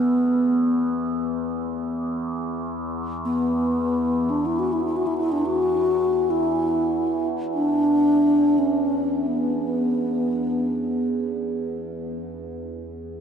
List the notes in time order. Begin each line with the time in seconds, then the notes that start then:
Already playing: E2 B3
3.25 B3
4.30 D4
4.46 E4
4.59 F#4
4.73 E4
4.84 E4
4.96 F#4
5.07 E4
5.18 E4
5.32 D4
5.46 F#4
6.30 E4
7.54 D4
8.58 C#4
9.27 B3
12.19 E2